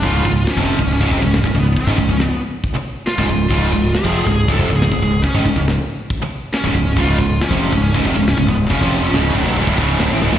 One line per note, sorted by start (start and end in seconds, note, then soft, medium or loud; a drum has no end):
0.02 0.24 C#1 medium
0.02 0.24 C#2 medium
0.02 0.24 G#2 medium
0.02 0.25 C#3 loud
0.02 0.49 F4 loud
0.02 kick medium
0.02 open hi-hat medium
0.25 0.45 C#1 medium
0.25 0.43 C#2 medium
0.25 0.43 G#2 medium
0.25 kick loud
0.47 snare loud
0.47 open hi-hat medium
0.51 0.92 C#4 medium
0.56 0.78 F1 medium
0.56 0.77 F2 medium
0.56 0.78 C3 loud
0.56 0.79 F3 loud
0.56 kick medium
0.77 1.00 C#1 medium
0.77 0.96 C#2 medium
0.77 0.97 G#2 medium
0.77 kick medium
0.91 1.59 C#4 medium
0.91 open hi-hat medium
1.01 1.11 C#1 medium
1.01 1.12 C#2 medium
1.01 1.12 G#2 loud
1.01 kick loud
1.11 1.21 F1 medium
1.11 1.22 F2 medium
1.11 1.23 C3 loud
1.11 kick medium
1.22 1.43 C#1 medium
1.22 1.41 C#2 medium
1.22 1.41 G#2 medium
1.22 kick medium
1.33 snare loud
1.33 open hi-hat medium
1.44 1.54 C#1 medium
1.44 1.54 C#2 medium
1.44 1.54 G#2 medium
1.44 kick medium
1.55 1.75 C#1 medium
1.55 1.73 C#2 medium
1.55 1.73 G#2 medium
1.55 kick medium
1.59 1.78 B3 medium
1.77 2.25 C#4 medium
1.77 kick loud
1.77 open hi-hat soft
1.87 1.97 G#1 loud
1.87 1.97 G#2 medium
1.87 1.98 D#3 medium
1.87 kick medium
1.97 2.08 C#1 medium
1.97 2.08 C#2 medium
1.97 2.09 G#2 medium
1.97 kick medium
2.08 2.29 C#1 medium
2.08 2.27 C#2 medium
2.08 2.27 G#2 medium
2.08 kick medium
2.19 snare loud
2.19 open hi-hat medium
2.25 2.40 B3 medium
2.64 kick loud
2.64 open hi-hat medium
2.76 muted distorted electric guitar stroke medium
2.76 muted fingered electric bass stroke soft
3.07 3.48 F4 medium
3.07 snare loud
3.07 open hi-hat medium
3.18 3.28 C#1 medium
3.18 3.28 C#2 medium
3.18 3.28 G#2 medium
3.18 kick loud
3.29 3.49 C#1 medium
3.29 3.47 C#2 medium
3.29 3.47 G#2 medium
3.29 kick medium
3.49 3.71 C#1 medium
3.49 3.71 C#2 medium
3.49 3.71 G#2 loud
3.49 3.72 C#3 medium
3.49 3.90 F4 medium
3.49 kick loud
3.49 crash medium
3.72 3.93 C#1 medium
3.72 3.90 C#2 medium
3.72 3.90 G#2 medium
3.72 kick medium
3.90 4.31 G#4 loud
3.90 open hi-hat medium
3.95 snare loud
4.04 4.25 F1 medium
4.04 4.25 F2 medium
4.04 4.25 C3 medium
4.04 4.26 F3 medium
4.04 kick medium
4.26 4.47 C#1 medium
4.26 4.44 C#2 medium
4.26 4.44 G#2 medium
4.26 kick medium
4.32 4.52 G#4 medium
4.38 open hi-hat medium
4.48 4.58 C#1 medium
4.48 4.58 C#2 medium
4.48 4.59 G#2 loud
4.48 kick loud
4.52 4.76 A4 loud
4.59 4.69 F1 medium
4.59 4.69 F2 medium
4.59 4.70 C3 loud
4.59 kick medium
4.69 4.90 C#1 medium
4.69 4.87 C#2 soft
4.69 4.87 G#2 medium
4.69 kick medium
4.76 5.23 G#4 loud
4.81 snare loud
4.81 open hi-hat medium
4.91 5.01 C#1 medium
4.91 5.01 C#2 medium
4.91 5.01 G#2 medium
4.91 kick medium
5.02 5.23 C#1 medium
5.02 5.20 C#2 medium
5.02 5.20 G#2 medium
5.02 kick medium
5.22 5.63 C#4 medium
5.22 kick loud
5.22 open hi-hat medium
5.34 5.45 G#1 medium
5.34 5.45 G#2 medium
5.34 5.46 D#3 loud
5.34 kick medium
5.45 5.55 C#1 medium
5.45 5.56 C#2 medium
5.45 5.56 G#2 medium
5.45 kick medium
5.55 5.76 C#1 medium
5.55 5.74 C#2 medium
5.55 5.74 G#2 medium
5.55 kick medium
5.67 snare loud
5.67 open hi-hat medium
6.10 kick loud
6.10 open hi-hat medium
6.20 muted fingered electric bass stroke soft
6.20 muted distorted electric guitar stroke medium
6.53 6.98 C#4 loud
6.53 snare loud
6.53 open hi-hat medium
6.64 6.74 C#1 medium
6.64 6.73 C#2 medium
6.64 6.74 G#2 loud
6.64 kick loud
6.75 6.95 C#1 medium
6.75 6.92 C#2 medium
6.75 6.93 G#2 medium
6.75 kick medium
6.96 7.17 C#1 medium
6.96 7.18 C#2 medium
6.96 7.18 G#2 loud
6.96 7.19 C#3 loud
6.96 7.38 F4 loud
6.96 kick loud
6.96 open hi-hat medium
7.18 7.39 C#1 medium
7.18 7.37 C#2 medium
7.18 7.36 G#2 medium
7.18 kick medium
7.41 7.81 C#4 medium
7.41 snare loud
7.41 open hi-hat medium
7.49 7.71 F1 medium
7.49 7.71 F2 medium
7.49 7.72 C3 loud
7.49 7.72 F3 loud
7.49 kick loud
7.73 7.93 C#1 medium
7.73 7.90 C#2 medium
7.73 7.90 G#2 medium
7.73 kick medium
7.83 8.23 C#4 medium
7.83 open hi-hat medium
7.94 8.05 C#1 medium
7.94 8.05 C#2 loud
7.94 8.05 G#2 loud
7.94 kick loud
8.05 8.15 F1 medium
8.05 8.15 F2 medium
8.05 8.16 C3 medium
8.05 kick medium
8.16 8.36 C#1 medium
8.16 8.33 C#2 medium
8.16 8.34 G#2 medium
8.16 kick medium
8.27 8.48 C#4 medium
8.27 snare loud
8.27 open hi-hat medium
8.37 8.48 C#1 medium
8.37 8.45 C#2 medium
8.37 8.45 G#2 medium
8.37 kick medium
8.46 8.69 C#1 medium
8.46 8.65 C#2 medium
8.46 8.65 G#2 medium
8.46 8.56 B3 medium
8.46 kick medium
8.51 8.67 C#2 medium
8.51 8.68 G#2 medium
8.68 8.80 F#1 medium
8.68 8.79 F#2 medium
8.68 8.79 C#3 loud
8.68 9.32 C#4 medium
8.68 kick loud
8.68 open hi-hat medium
8.72 8.81 F#2 medium
8.72 8.82 C#3 loud
8.79 9.11 F1 medium
8.79 9.12 F2 medium
8.79 9.12 C3 medium
8.79 9.12 F3 medium
8.79 kick medium
9.13 9.34 C#1 medium
9.13 9.34 C#2 medium
9.13 9.35 G#2 loud
9.13 9.35 C#3 loud
9.13 snare loud
9.13 open hi-hat medium
9.34 9.45 D1 medium
9.34 9.45 D2 medium
9.34 9.45 A2 loud
9.34 kick loud
9.46 9.56 B1 medium
9.46 9.55 B2 medium
9.46 9.57 F#3 medium
9.46 kick medium
9.56 9.67 C#1 medium
9.56 9.67 C#2 loud
9.56 9.67 G#2 loud
9.56 kick loud
9.56 open hi-hat medium
9.67 9.77 D1 medium
9.67 9.77 D2 medium
9.67 9.78 A2 loud
9.67 kick medium
9.77 9.98 C#1 medium
9.77 9.99 C#2 loud
9.77 10.00 G#2 medium
9.77 10.00 C#3 medium
9.77 kick medium
9.99 10.10 D1 medium
9.99 10.10 D2 loud
9.99 10.10 A2 loud
9.99 snare loud
9.99 open hi-hat medium
10.11 10.21 A1 medium
10.11 10.21 A2 medium
10.11 10.21 E3 medium
10.22 10.32 C#1 medium
10.22 10.32 C#2 medium
10.22 10.32 G#2 medium
10.22 snare medium
10.32 10.39 D1 medium
10.32 10.39 D2 medium
10.32 10.39 A2 medium
10.32 snare medium